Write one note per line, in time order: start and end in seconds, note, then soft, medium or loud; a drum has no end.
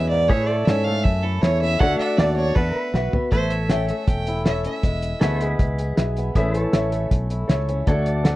0.00 0.29 E2 loud
0.00 0.11 F#2 medium
0.00 0.28 G#3 medium
0.00 0.30 B3 medium
0.00 0.27 E4 medium
0.00 0.28 G#4 medium
0.00 0.28 B4 medium
0.00 0.29 B4 medium
0.00 0.30 E5 medium
0.09 0.30 G#2 medium
0.09 0.29 D5 loud
0.28 0.66 A2 loud
0.28 0.64 A2 medium
0.28 0.86 A3 medium
0.28 0.49 G#4 medium
0.28 0.55 B4 medium
0.28 0.48 C#5 loud
0.28 1.81 E5 medium
0.28 kick loud
0.28 open hi-hat medium
0.46 1.79 A4 medium
0.46 0.67 D5 medium
0.55 1.80 C#5 medium
0.65 1.04 G#2 medium
0.65 1.02 E3 medium
0.65 1.61 C#4 medium
0.65 1.03 E4 medium
0.65 1.03 A4 medium
0.65 1.04 C#5 medium
0.65 0.85 E5 loud
0.65 snare loud
0.65 open hi-hat medium
0.84 1.79 A3 medium
0.84 1.05 F5 loud
1.04 1.39 E2 medium
1.04 1.42 F#2 loud
1.04 1.24 E5 loud
1.04 kick loud
1.04 open hi-hat medium
1.23 1.81 E4 medium
1.23 1.44 A4 medium
1.42 1.80 E2 loud
1.42 1.77 E3 medium
1.42 1.78 E4 medium
1.42 1.79 A4 medium
1.42 1.61 C#5 medium
1.42 1.79 C#5 medium
1.42 snare loud
1.42 open hi-hat medium
1.61 1.79 C#4 medium
1.61 1.81 E5 loud
1.79 1.98 D2 loud
1.79 2.15 D3 medium
1.79 2.18 A3 medium
1.79 2.37 D4 medium
1.79 2.18 F#4 medium
1.79 2.55 A4 medium
1.79 2.01 C#5 medium
1.79 2.08 E5 medium
1.79 1.98 F#5 loud
1.79 kick loud
1.79 open hi-hat soft
1.99 2.55 D5 medium
1.99 2.19 E5 loud
1.99 muted fingered electric bass stroke soft
2.08 2.56 F#5 medium
2.17 2.55 D#2 loud
2.17 2.53 A3 medium
2.17 2.54 F#4 medium
2.17 2.55 F#4 medium
2.17 2.54 A4 medium
2.17 2.36 D5 medium
2.17 2.55 D5 medium
2.17 snare loud
2.17 open hi-hat medium
2.36 2.55 D4 medium
2.36 2.57 C#5 loud
2.55 2.74 E2 medium
2.55 2.91 E2 medium
2.55 3.13 B3 medium
2.55 2.80 A4 medium
2.55 3.13 B4 medium
2.55 3.32 E5 medium
2.55 3.32 F#5 medium
2.55 kick loud
2.55 open hi-hat soft
2.76 muted fingered electric bass stroke soft
2.80 3.31 B4 medium
2.94 3.12 B1 loud
2.94 3.29 E3 medium
2.94 3.30 F#4 medium
2.94 3.30 B4 medium
2.94 3.31 E5 medium
2.94 snare medium
3.14 3.30 B3 medium
3.14 floor tom medium
3.31 3.91 A1 loud
3.31 3.66 A2 medium
3.31 3.89 A3 medium
3.31 4.82 A4 medium
3.31 3.52 C5 loud
3.31 4.82 C#5 medium
3.31 4.83 E5 medium
3.31 kick medium
3.31 closed hi-hat medium
3.50 3.71 E5 medium
3.50 closed hi-hat medium
3.69 4.04 E3 medium
3.69 4.64 C#4 medium
3.69 4.05 A4 medium
3.69 4.06 C#5 medium
3.69 4.06 E5 loud
3.69 3.88 G5 medium
3.69 snare loud
3.69 closed hi-hat medium
3.89 4.82 A3 medium
3.89 4.09 E5 medium
3.89 closed hi-hat medium
4.07 4.66 E1 medium
4.07 4.42 E2 medium
4.07 4.44 G5 medium
4.07 kick loud
4.07 closed hi-hat medium
4.27 5.79 E4 medium
4.27 closed hi-hat medium
4.45 4.80 E3 medium
4.45 4.81 A4 medium
4.45 4.82 C#5 medium
4.45 4.64 E5 medium
4.45 4.82 E5 medium
4.45 snare loud
4.45 closed hi-hat medium
4.64 4.82 C#4 medium
4.64 5.38 E5 medium
4.64 closed hi-hat medium
4.83 5.13 E1 medium
4.83 5.18 E2 medium
4.83 5.41 G#3 medium
4.83 kick loud
4.83 closed hi-hat medium
5.02 closed hi-hat medium
5.20 5.54 D2 medium
5.20 5.56 E3 medium
5.20 6.17 B3 medium
5.20 5.56 G#4 medium
5.20 5.41 A4 medium
5.20 5.57 B4 medium
5.20 5.47 C#5 medium
5.20 5.57 E5 medium
5.20 6.35 E5 medium
5.20 snare loud
5.20 closed hi-hat medium
5.41 6.34 G#3 medium
5.41 6.34 G#4 medium
5.41 closed hi-hat medium
5.47 6.34 B4 medium
5.59 5.92 C#2 medium
5.59 5.94 B2 medium
5.59 kick loud
5.59 closed hi-hat medium
5.78 6.34 G#4 medium
5.78 closed hi-hat medium
5.96 6.30 B1 medium
5.96 6.32 E3 medium
5.96 6.32 G#4 medium
5.96 6.33 B4 medium
5.96 6.33 E5 medium
5.96 snare loud
5.96 closed hi-hat medium
6.16 6.36 B3 medium
6.16 closed hi-hat medium
6.35 6.65 A1 loud
6.35 6.70 A2 medium
6.35 6.72 E3 medium
6.35 6.92 A3 medium
6.35 6.72 C#4 medium
6.35 7.30 E4 medium
6.35 6.56 G#4 medium
6.35 6.62 B4 medium
6.35 7.87 E5 medium
6.35 kick medium
6.35 closed hi-hat medium
6.54 7.86 A4 medium
6.54 closed hi-hat medium
6.62 7.86 C#5 medium
6.73 7.06 A1 medium
6.73 7.07 E3 medium
6.73 7.68 C#4 medium
6.73 7.09 A4 medium
6.73 7.09 C#5 medium
6.73 7.09 E5 medium
6.73 snare loud
6.73 closed hi-hat medium
6.92 7.88 A3 medium
6.92 closed hi-hat medium
7.11 7.43 B1 medium
7.11 7.46 E2 medium
7.11 kick medium
7.11 closed hi-hat medium
7.30 7.87 E4 medium
7.30 closed hi-hat medium
7.48 7.81 C#2 medium
7.48 7.83 E3 medium
7.48 7.84 A4 medium
7.48 7.85 C#5 medium
7.48 7.85 E5 medium
7.48 snare loud
7.48 closed hi-hat medium
7.69 7.85 C#4 medium
7.69 closed hi-hat medium
7.87 8.36 D2 loud
7.87 8.21 D3 medium
7.87 8.25 A3 medium
7.87 8.36 D4 medium
7.87 8.25 F#4 medium
7.87 8.36 A4 medium
7.87 8.08 C#5 medium
7.87 8.36 F#5 medium
7.87 kick loud
7.87 closed hi-hat medium
8.06 8.36 D5 medium
8.06 closed hi-hat medium
8.24 8.36 A3 medium
8.24 8.36 F#4 medium
8.24 8.36 A4 medium
8.24 8.36 D5 medium
8.24 8.36 F#5 loud
8.24 snare loud
8.24 closed hi-hat medium